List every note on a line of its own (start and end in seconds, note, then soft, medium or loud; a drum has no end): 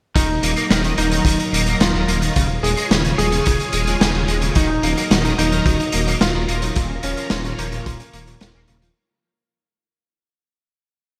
0.15 0.37 D#1 loud
0.15 0.26 D#3 medium
0.15 2.33 F#3 medium
0.15 0.87 D#4 loud
0.15 2.34 A#4 medium
0.15 2.33 D#5 medium
0.15 2.34 A#5 medium
0.15 kick loud
0.15 closed hi-hat medium
0.43 0.54 D#1 medium
0.43 0.50 A#3 medium
0.43 closed hi-hat loud
0.57 0.64 A#3 loud
0.57 closed hi-hat medium
0.70 0.92 D#1 medium
0.70 0.81 D#3 medium
0.70 snare loud
0.70 closed hi-hat medium
0.84 0.91 D#3 loud
0.84 closed hi-hat medium
0.98 1.20 D#1 medium
0.98 1.05 A#3 medium
0.98 1.70 D#4 medium
0.98 closed hi-hat medium
1.11 1.22 D#3 medium
1.11 closed hi-hat medium
1.25 1.36 D#1 loud
1.25 1.36 D#3 medium
1.25 kick loud
1.25 closed hi-hat medium
1.39 closed hi-hat medium
1.53 1.75 D#1 loud
1.53 1.60 A#3 medium
1.53 closed hi-hat loud
1.66 1.74 A#3 loud
1.66 closed hi-hat medium
1.80 1.91 D#1 medium
1.80 1.91 D#3 medium
1.80 2.52 F4 medium
1.80 snare loud
1.80 closed hi-hat medium
1.94 2.05 D#1 medium
1.94 2.01 D#3 medium
2.08 2.30 D#1 medium
2.08 2.15 A#3 loud
2.08 closed hi-hat medium
2.22 2.32 D#3 medium
2.22 closed hi-hat medium
2.36 2.58 D#1 loud
2.36 2.46 C#3 medium
2.36 4.54 F4 medium
2.36 4.54 G#4 medium
2.36 4.54 C#5 medium
2.36 4.54 G#5 medium
2.36 kick loud
2.36 closed hi-hat medium
2.63 2.74 D#1 medium
2.63 2.70 G#3 medium
2.63 2.95 G#4 medium
2.63 closed hi-hat medium
2.77 2.84 G#3 loud
2.77 closed hi-hat medium
2.91 3.12 D#1 medium
2.91 3.01 C#3 medium
2.91 snare loud
2.91 closed hi-hat medium
3.04 3.11 C#3 loud
3.04 closed hi-hat medium
3.18 3.40 D#1 medium
3.18 3.25 G#3 medium
3.18 4.45 G#4 medium
3.18 closed hi-hat medium
3.32 3.42 C#3 medium
3.32 closed hi-hat medium
3.46 3.57 D#1 loud
3.46 3.56 C#3 medium
3.46 kick loud
3.46 closed hi-hat medium
3.60 closed hi-hat medium
3.73 3.95 D#1 loud
3.73 3.80 G#3 medium
3.73 closed hi-hat medium
3.87 3.94 G#3 loud
3.87 closed hi-hat medium
4.01 4.12 D#1 medium
4.01 4.11 C#3 medium
4.01 snare loud
4.01 closed hi-hat medium
4.14 4.25 D#1 medium
4.14 4.21 C#3 loud
4.28 4.50 D#1 medium
4.28 4.35 G#3 loud
4.28 closed hi-hat medium
4.42 4.52 C#3 medium
4.42 closed hi-hat medium
4.55 4.78 D#1 loud
4.55 4.66 D#3 medium
4.55 6.74 F#3 medium
4.55 5.28 D#4 medium
4.55 4.65 F#4 medium
4.55 8.92 A#4 medium
4.55 6.74 D#5 medium
4.55 6.74 A#5 medium
4.55 kick loud
4.55 closed hi-hat medium
4.70 4.79 D#4 medium
4.83 4.94 D#1 loud
4.83 4.90 A#3 medium
4.83 4.92 A#3 medium
4.83 closed hi-hat medium
4.97 5.10 F#3 medium
4.97 5.04 A#3 loud
4.97 closed hi-hat medium
5.11 5.33 D#1 medium
5.11 5.21 D#3 medium
5.11 5.20 F#4 medium
5.11 snare loud
5.11 closed hi-hat medium
5.25 5.32 D#3 loud
5.25 5.34 D#4 medium
5.25 closed hi-hat medium
5.38 5.60 D#1 medium
5.38 5.45 A#3 medium
5.38 5.47 A#3 medium
5.38 6.10 D#4 loud
5.38 closed hi-hat loud
5.52 5.63 D#3 medium
5.52 5.65 F#3 medium
5.52 closed hi-hat medium
5.66 5.77 D#1 loud
5.66 5.76 D#3 medium
5.66 5.75 F#4 medium
5.66 kick loud
5.66 closed hi-hat medium
5.80 5.89 D#4 medium
5.80 closed hi-hat medium
5.92 6.15 D#1 loud
5.92 6.00 A#3 medium
5.92 6.02 A#3 medium
5.92 closed hi-hat loud
6.07 6.20 F#3 medium
6.07 6.14 A#3 loud
6.07 closed hi-hat medium
6.21 6.32 D#1 medium
6.21 6.31 D#3 medium
6.21 6.93 F4 medium
6.21 6.30 F#4 medium
6.21 snare loud
6.21 closed hi-hat medium
6.35 6.46 D#1 medium
6.35 6.42 D#3 loud
6.35 6.44 D#4 medium
6.49 6.70 D#1 medium
6.49 6.55 A#3 loud
6.49 6.57 A#3 medium
6.49 closed hi-hat medium
6.62 6.73 D#3 medium
6.62 6.75 F#3 medium
6.62 closed hi-hat medium
6.76 6.98 D#1 loud
6.76 6.86 A#2 medium
6.76 6.85 F4 medium
6.76 8.94 F4 medium
6.76 8.94 C#5 medium
6.76 8.94 A#5 medium
6.76 kick loud
6.76 closed hi-hat medium
6.90 6.99 C#4 medium
7.03 7.14 D#1 medium
7.03 7.11 F3 medium
7.03 7.12 A#3 medium
7.03 7.36 C#4 medium
7.03 closed hi-hat medium
7.17 7.30 F3 medium
7.17 7.24 F3 loud
7.17 closed hi-hat medium
7.30 7.53 D#1 medium
7.30 7.42 A#2 medium
7.30 7.40 F4 medium
7.30 snare loud
7.30 closed hi-hat medium
7.45 7.52 A#2 loud
7.45 7.54 C#4 medium
7.45 closed hi-hat soft
7.59 7.80 D#1 medium
7.59 7.66 F3 medium
7.59 7.67 A#3 medium
7.59 8.85 A#3 medium
7.59 closed hi-hat loud
7.72 7.83 A#2 medium
7.72 7.86 F3 medium
7.72 closed hi-hat medium
7.86 7.97 D#1 loud
7.86 7.97 A#2 medium
7.86 7.95 F4 medium
7.86 kick loud
7.86 closed hi-hat medium
8.00 8.09 C#4 medium
8.00 closed hi-hat medium
8.13 8.35 D#1 loud
8.13 8.21 A#3 medium
8.13 8.23 A#3 medium
8.13 closed hi-hat medium
8.27 8.34 A#2 medium
8.27 8.41 F3 medium
8.27 closed hi-hat medium
8.41 8.52 D#1 medium
8.41 8.48 A#2 medium
8.41 8.50 F4 medium
8.41 snare loud
8.41 closed hi-hat medium
8.55 8.66 D#1 medium
8.55 8.59 A#3 medium
8.55 8.64 C#4 medium
8.68 8.90 D#1 medium
8.68 8.76 C#3 loud
8.68 8.78 A#3 medium
8.68 closed hi-hat medium
8.82 8.87 F3 medium
8.82 8.96 F3 medium
8.82 closed hi-hat medium